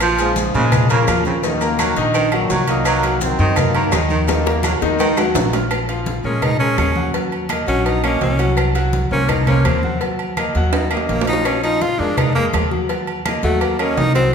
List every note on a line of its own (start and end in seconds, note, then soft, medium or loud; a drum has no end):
0.00 0.48 A#1 loud
0.00 0.31 F3 medium
0.00 0.12 F4 medium
0.00 0.12 F5 medium
0.00 0.13 F6 medium
0.00 cowbell loud
0.00 low agogo loud
0.00 claves medium
0.00 maracas medium
0.18 0.86 G#2 medium
0.18 0.54 C#3 medium
0.18 0.52 F3 medium
0.18 0.48 G#3 medium
0.18 0.48 G#4 medium
0.18 0.48 G#5 medium
0.18 cowbell medium
0.18 high conga soft
0.18 low agogo medium
0.18 maracas medium
0.36 cowbell medium
0.36 high conga loud
0.36 low timbale medium
0.36 maracas medium
0.54 1.04 A#2 loud
0.54 0.73 C#3 medium
0.54 0.90 C#3 medium
0.54 0.89 F3 medium
0.54 0.88 G#3 loud
0.54 0.84 F4 medium
0.54 0.84 F5 medium
0.54 0.84 F6 medium
0.54 maracas soft
0.72 cowbell loud
0.72 high conga soft
0.72 low conga medium
0.72 low agogo loud
0.72 claves medium
0.72 maracas medium
0.89 1.09 C#3 medium
0.89 1.40 C#3 medium
0.89 1.40 F3 medium
0.89 1.04 A#3 medium
0.89 1.23 A#3 loud
0.89 1.04 A#4 medium
0.89 1.05 A#5 medium
0.89 high conga soft
0.89 low agogo medium
0.89 maracas medium
1.07 1.91 D#2 medium
1.07 1.37 F3 medium
1.07 1.37 F4 medium
1.07 1.37 F5 medium
1.07 cowbell medium
1.07 high conga medium
1.07 low timbale medium
1.07 low agogo loud
1.07 claves medium
1.07 maracas medium
1.25 1.55 C#3 medium
1.25 1.34 C4 medium
1.25 high conga medium
1.25 maracas soft
1.43 1.58 D#3 medium
1.43 2.11 D#3 medium
1.43 2.11 F#3 medium
1.43 2.11 A#3 loud
1.43 1.58 D#4 medium
1.43 1.58 D#5 medium
1.43 cowbell loud
1.43 high conga soft
1.43 low agogo medium
1.43 maracas medium
1.61 1.90 A#3 medium
1.61 1.90 A#4 medium
1.61 1.91 A#5 medium
1.61 high conga soft
1.61 low agogo medium
1.61 maracas medium
1.79 1.98 F#3 medium
1.79 cowbell medium
1.79 high conga loud
1.79 low timbale medium
1.79 low agogo loud
1.79 claves medium
1.79 maracas medium
1.97 2.46 A#1 loud
1.97 2.26 D#3 loud
1.97 2.26 D#4 loud
1.97 2.26 D#5 medium
1.97 cowbell medium
1.97 maracas soft
2.14 2.33 D#3 medium
2.14 cowbell loud
2.14 high conga soft
2.14 low agogo medium
2.14 maracas medium
2.32 2.82 A#2 medium
2.32 2.67 D#3 medium
2.32 2.66 F#3 loud
2.32 2.62 F#3 medium
2.32 2.62 F#4 medium
2.32 2.62 F#5 medium
2.32 low agogo loud
2.32 claves medium
2.50 3.33 C2 medium
2.50 2.69 F#3 medium
2.50 cowbell medium
2.50 high conga medium
2.50 low timbale medium
2.50 maracas medium
2.67 3.21 D#3 medium
2.67 3.21 F#3 medium
2.67 3.18 A#3 loud
2.67 2.98 D#4 medium
2.67 2.98 D#5 medium
2.67 2.98 D#6 medium
2.67 cowbell medium
2.67 high conga soft
2.67 low agogo medium
2.67 maracas soft
2.85 3.15 F#3 medium
2.85 cowbell loud
2.85 high conga soft
2.85 low agogo loud
2.85 claves medium
2.85 maracas medium
3.03 3.33 F#3 medium
3.03 3.33 F#4 medium
3.03 3.33 F#5 medium
3.03 cowbell medium
3.03 high conga soft
3.03 low agogo medium
3.21 3.56 D#3 medium
3.21 3.57 F#3 medium
3.21 3.57 C4 loud
3.21 cowbell medium
3.21 high conga loud
3.21 low timbale medium
3.21 maracas medium
3.39 3.88 F#2 loud
3.39 3.58 D#3 medium
3.39 3.69 D#4 medium
3.39 3.69 D#5 medium
3.39 3.69 D#6 medium
3.39 maracas soft
3.56 4.10 D#3 medium
3.56 4.10 F#3 medium
3.56 3.93 A#3 loud
3.56 cowbell loud
3.56 high conga soft
3.56 low conga medium
3.56 low agogo loud
3.56 claves medium
3.56 maracas medium
3.75 3.93 D#3 medium
3.75 3.90 A#3 medium
3.75 3.90 A#4 medium
3.75 3.90 A#5 medium
3.75 high conga soft
3.75 low agogo loud
3.92 4.76 D#2 loud
3.92 4.22 D#3 medium
3.92 4.01 G#3 medium
3.92 4.22 D#4 medium
3.92 4.22 D#5 medium
3.92 cowbell medium
3.92 high conga medium
3.92 low timbale loud
3.92 low agogo loud
3.92 claves medium
3.92 maracas medium
4.10 4.39 D#3 medium
4.10 5.14 D#3 medium
4.10 5.13 F#3 medium
4.10 5.13 A#3 medium
4.10 high conga medium
4.10 maracas soft
4.28 4.42 D#3 medium
4.28 4.43 D#4 medium
4.28 4.43 D#5 medium
4.28 cowbell loud
4.28 high bongo loud
4.28 high conga soft
4.28 low agogo medium
4.28 maracas medium
4.46 4.75 A#3 medium
4.46 4.75 A#4 medium
4.46 4.76 A#5 medium
4.46 high bongo medium
4.46 high conga soft
4.46 low agogo medium
4.63 4.83 F#3 medium
4.63 cowbell medium
4.63 high conga loud
4.63 low timbale medium
4.63 low agogo loud
4.63 claves medium
4.63 maracas medium
4.81 5.31 D#2 medium
4.81 5.11 D#3 loud
4.81 5.11 D#4 medium
4.81 5.11 D#5 medium
4.81 cowbell medium
4.81 high bongo medium
4.81 maracas soft
4.99 5.18 D#3 loud
4.99 cowbell loud
4.99 low bongo medium
4.99 high conga soft
4.99 low agogo medium
4.99 maracas medium
5.17 5.47 F#3 medium
5.17 5.47 F#4 medium
5.17 5.47 F#5 medium
5.17 low bongo medium
5.17 high conga soft
5.17 high timbale medium
5.17 low agogo loud
5.17 claves medium
5.17 maracas medium
5.35 6.18 A#1 loud
5.35 5.54 F#3 medium
5.35 cowbell medium
5.35 low bongo loud
5.35 high conga loud
5.35 high timbale medium
5.35 maracas medium
5.53 5.68 F4 medium
5.53 5.68 F5 medium
5.53 5.68 F6 medium
5.53 cowbell medium
5.53 low bongo medium
5.53 high conga soft
5.53 low timbale medium
5.53 low agogo medium
5.53 maracas soft
5.71 cowbell loud
5.71 high conga soft
5.71 low agogo loud
5.71 claves medium
5.89 6.18 F3 medium
5.89 6.18 F4 medium
5.89 6.18 F5 medium
5.89 cowbell medium
5.89 low agogo medium
6.06 cowbell medium
6.06 high conga loud
6.06 low timbale medium
6.24 6.74 A#2 medium
6.24 6.54 G#3 medium
6.24 6.45 C#4 medium
6.24 6.54 G#4 medium
6.24 6.54 A#4 medium
6.42 6.59 D#4 medium
6.42 cowbell loud
6.42 high conga soft
6.42 low conga medium
6.42 low agogo loud
6.42 claves medium
6.59 6.89 G#3 medium
6.59 6.76 C#4 loud
6.59 6.89 G#4 medium
6.59 6.89 A#4 medium
6.59 high conga soft
6.59 low agogo medium
6.78 7.62 D#2 medium
6.78 7.12 C#4 medium
6.78 cowbell medium
6.78 high conga medium
6.78 low timbale medium
6.78 low agogo loud
6.78 claves medium
6.96 7.11 F#3 medium
6.96 7.11 F#4 medium
6.96 7.11 F#5 medium
6.96 high conga medium
7.14 7.43 F#3 medium
7.14 7.43 F#4 medium
7.14 7.43 F#5 medium
7.14 cowbell loud
7.14 high conga soft
7.14 low agogo medium
7.32 high conga soft
7.32 low agogo medium
7.49 7.64 A#3 medium
7.49 7.65 A#4 medium
7.49 7.65 D#5 medium
7.49 cowbell medium
7.49 high conga medium
7.49 low timbale medium
7.49 low agogo loud
7.49 claves medium
7.67 8.18 A#1 loud
7.67 7.97 F#3 loud
7.67 7.87 C#4 medium
7.67 7.97 F#4 loud
7.67 7.97 F#5 medium
7.67 cowbell medium
7.85 8.03 D#4 medium
7.85 cowbell loud
7.85 high conga soft
7.85 low agogo medium
8.03 8.33 A#3 medium
8.03 8.20 C#4 medium
8.03 8.33 A#4 loud
8.03 8.33 D#5 medium
8.03 high conga soft
8.03 low agogo loud
8.03 claves medium
8.21 9.05 C2 medium
8.21 8.55 C#4 medium
8.21 cowbell medium
8.21 high conga medium
8.21 low timbale medium
8.39 8.68 F#3 medium
8.39 8.69 F#4 medium
8.39 8.69 F#5 medium
8.39 cowbell medium
8.39 high conga soft
8.39 low agogo medium
8.57 cowbell loud
8.57 high conga soft
8.57 low agogo loud
8.57 claves medium
8.75 9.05 F#3 medium
8.75 9.05 F#4 loud
8.75 9.05 F#5 medium
8.75 cowbell medium
8.75 high conga soft
8.75 low agogo medium
8.93 cowbell medium
8.93 high conga loud
8.93 low timbale medium
9.11 9.61 C2 medium
9.11 9.41 A#3 medium
9.11 9.31 C#4 medium
9.11 9.41 A#4 medium
9.11 9.41 C5 medium
9.29 9.46 D#4 medium
9.29 cowbell loud
9.29 high conga soft
9.29 low conga medium
9.29 low agogo loud
9.29 claves medium
9.47 9.77 A#3 medium
9.47 9.67 C#4 medium
9.47 9.77 A#4 medium
9.47 9.77 C5 medium
9.47 high conga soft
9.47 low conga medium
9.47 low agogo medium
9.64 10.49 D#2 medium
9.64 10.01 C4 medium
9.64 cowbell medium
9.64 high conga loud
9.64 low timbale medium
9.64 low agogo loud
9.64 claves medium
9.83 9.98 F#3 medium
9.83 9.98 F#4 medium
9.83 9.99 F#5 medium
9.83 high conga medium
10.01 10.31 F#3 medium
10.01 10.31 F#4 medium
10.01 10.31 F#5 medium
10.01 cowbell loud
10.01 high conga soft
10.01 low agogo medium
10.19 high conga soft
10.19 low agogo medium
10.37 10.52 A#3 medium
10.37 10.52 A#4 medium
10.37 10.53 D#5 medium
10.37 cowbell medium
10.37 high conga medium
10.37 low timbale medium
10.37 low agogo loud
10.37 claves medium
10.55 11.05 D#2 loud
10.55 10.85 F#3 medium
10.55 10.85 F#4 medium
10.55 10.86 F#5 loud
10.55 cowbell medium
10.73 10.90 D#4 medium
10.73 cowbell loud
10.73 high conga soft
10.73 high timbale medium
10.73 low agogo medium
10.90 11.06 F#3 soft
10.90 11.21 A#3 medium
10.90 11.21 A#4 medium
10.90 11.21 D#5 medium
10.90 high conga soft
10.90 low agogo loud
10.90 claves medium
10.97 low timbale medium
11.09 11.93 A#1 medium
11.09 11.27 A#3 medium
11.09 cowbell medium
11.09 high conga medium
11.09 low timbale medium
11.21 low timbale loud
11.27 11.57 F3 medium
11.27 11.47 D#4 loud
11.27 11.57 F4 medium
11.27 11.57 F5 medium
11.27 cowbell medium
11.27 high conga soft
11.27 low agogo medium
11.33 low timbale loud
11.45 11.63 C#4 medium
11.45 cowbell loud
11.45 high conga soft
11.45 low agogo loud
11.45 claves medium
11.63 11.93 F3 medium
11.63 11.83 D#4 loud
11.63 11.94 F4 loud
11.63 11.94 F5 medium
11.63 cowbell medium
11.63 high conga soft
11.63 low agogo medium
11.81 12.00 F4 loud
11.81 cowbell medium
11.81 high conga loud
11.81 low timbale medium
11.99 12.49 F2 medium
11.99 12.29 G#3 medium
11.99 12.19 D4 medium
11.99 12.29 G#4 medium
11.99 12.30 A#4 medium
12.17 12.34 D#4 medium
12.17 cowbell loud
12.17 high conga soft
12.17 low conga medium
12.17 low agogo loud
12.17 claves medium
12.35 12.65 G#3 medium
12.35 12.46 A#3 loud
12.35 12.65 G#4 medium
12.35 12.66 A#4 medium
12.35 high conga soft
12.35 low agogo medium
12.53 13.38 D#2 medium
12.53 cowbell medium
12.53 high conga medium
12.53 low timbale medium
12.53 low agogo loud
12.53 claves medium
12.71 12.86 F#3 medium
12.71 12.86 F#4 medium
12.71 12.86 F#5 medium
12.71 high conga medium
12.89 13.19 F#3 medium
12.89 13.19 F#4 medium
12.89 13.19 F#5 medium
12.89 cowbell loud
12.89 high conga soft
12.89 low agogo medium
13.07 high conga soft
13.07 low agogo medium
13.25 13.41 A#3 medium
13.25 13.41 A#4 medium
13.25 13.41 D#5 medium
13.25 cowbell medium
13.25 high conga loud
13.25 low timbale medium
13.25 low agogo loud
13.25 claves medium
13.43 13.93 D#2 loud
13.43 13.73 F#3 medium
13.43 13.62 A3 loud
13.43 13.73 F#4 loud
13.43 13.73 F#5 loud
13.43 cowbell medium
13.61 13.78 A#3 medium
13.61 cowbell loud
13.61 high conga soft
13.61 low agogo loud
13.79 14.09 A#3 medium
13.79 13.99 C#4 medium
13.79 14.09 A#4 medium
13.79 14.10 D#5 medium
13.79 high conga soft
13.79 low agogo loud
13.79 claves medium
13.97 14.35 C2 medium
13.97 14.14 D#4 loud
13.97 cowbell medium
13.97 high conga medium
13.97 low timbale loud
14.15 14.35 F#3 medium
14.15 14.32 C4 loud
14.15 14.35 F#4 medium
14.15 14.35 F#5 medium
14.15 cowbell medium
14.15 high conga soft
14.15 low agogo medium